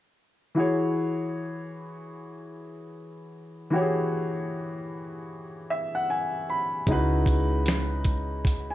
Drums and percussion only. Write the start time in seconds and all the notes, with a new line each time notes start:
6.87 kick, closed hi-hat
7.26 kick, closed hi-hat
7.66 finger snap, snare, closed hi-hat
8.04 kick, closed hi-hat
8.45 kick, closed hi-hat